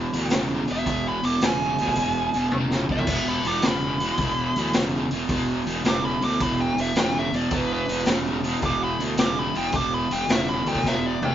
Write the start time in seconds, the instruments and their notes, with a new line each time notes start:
Already playing: lead electric guitar B5
0.13 fingered electric bass D2, overdriven electric guitar E2 B2, open hi-hat
0.30 fingered electric bass E1, overdriven electric guitar E2 C#3, snare, open hi-hat
0.67 fingered electric bass E1, overdriven electric guitar E2 B2, open hi-hat
0.72 lead electric guitar E5
0.86 fingered electric bass E1, overdriven electric guitar E2 B2, kick, open hi-hat
1.08 lead electric guitar B5
1.23 fingered electric bass E1, overdriven electric guitar E2 B2, lead electric guitar D6, open hi-hat
1.41 fingered electric bass E1, overdriven electric guitar E2 C#3, lead electric guitar G#5, snare, open hi-hat
1.78 fingered electric bass D2, overdriven electric guitar E2 B2, open hi-hat
1.88 kick
1.95 fingered electric bass E1, overdriven electric guitar E2 B2, kick, open hi-hat
2.33 fingered electric bass E1, overdriven electric guitar E2 B2, open hi-hat
2.51 fingered electric bass E1, overdriven electric guitar E2 C#3, high tom
2.71 snare
2.89 fingered electric bass E1, overdriven electric guitar E2 B2, lead electric guitar E5, kick
2.98 floor tom
3.07 fingered electric bass E1, overdriven electric guitar E2 B2, kick, open hi-hat, crash
3.28 lead electric guitar B5
3.45 fingered electric bass E1, overdriven electric guitar E2 B2, lead electric guitar D6, open hi-hat
3.62 fingered electric bass E1, overdriven electric guitar E2 C#3, snare, open hi-hat
3.68 lead electric guitar B5
4.00 overdriven electric guitar E2 B2, open hi-hat
4.17 fingered electric bass E1, overdriven electric guitar E2 B2, kick, open hi-hat
4.56 fingered electric bass D2, overdriven electric guitar E2 B2, open hi-hat
4.73 fingered electric bass E1, overdriven electric guitar E2 C#3, snare, open hi-hat
5.11 fingered electric bass E1, overdriven electric guitar E2 B2, open hi-hat
5.29 fingered electric bass E1, overdriven electric guitar E2 B2, kick, open hi-hat
5.66 fingered electric bass E1, overdriven electric guitar E2 B2, open hi-hat
5.84 fingered electric bass E1, overdriven electric guitar E2 C#3, snare, open hi-hat
5.88 lead electric guitar D6
6.05 lead electric guitar B5
6.21 fingered electric bass D2, overdriven electric guitar E2 B2, lead electric guitar D6, open hi-hat
6.40 fingered electric bass E1, overdriven electric guitar E2 B2, lead electric guitar B5, kick, open hi-hat
6.61 lead electric guitar G5
6.77 fingered electric bass E1, overdriven electric guitar E2 B2, open hi-hat
6.81 lead electric guitar E5
6.95 fingered electric bass E1, overdriven electric guitar E2 C#3, snare, open hi-hat
6.99 lead electric guitar G5
7.19 lead electric guitar E5
7.33 fingered electric bass E1, overdriven electric guitar E2 B2, lead electric guitar D5, open hi-hat
7.51 fingered electric bass E1, overdriven electric guitar E2 B2, kick, open hi-hat
7.56 lead electric guitar B4
7.73 lead electric guitar B4
7.88 fingered electric bass E1, overdriven electric guitar E2 B2, open hi-hat
8.05 fingered electric bass E1, overdriven electric guitar E2 C#3, snare, open hi-hat
8.43 overdriven electric guitar E2 B2, open hi-hat
8.61 fingered electric bass E1, overdriven electric guitar E2 B2, kick, open hi-hat
8.66 lead electric guitar D6
8.84 lead electric guitar B5
8.99 fingered electric bass D2, overdriven electric guitar E2 B2, open hi-hat
9.16 fingered electric bass E1, overdriven electric guitar E2 C#3, lead electric guitar D6, snare, open hi-hat
9.39 lead electric guitar B5
9.54 fingered electric bass E1, overdriven electric guitar E2 B2, lead electric guitar G5, open hi-hat
9.72 fingered electric bass E1, overdriven electric guitar E2 B2, lead electric guitar D6, kick, open hi-hat
9.94 lead electric guitar B5
10.10 fingered electric bass E1, overdriven electric guitar E2 B2, lead electric guitar G5, open hi-hat
10.28 fingered electric bass E1, overdriven electric guitar E2 C#3, lead electric guitar E5, snare, open hi-hat
10.49 lead electric guitar B5
10.66 fingered electric bass D2, overdriven electric guitar E2 B2, lead electric guitar G5, open hi-hat
10.75 kick
10.84 fingered electric bass E1, overdriven electric guitar E2 B2, lead electric guitar E5, kick, snare
11.06 lead electric guitar D5
11.22 fingered electric bass E1, overdriven electric guitar E2 B2, lead electric guitar G5, high tom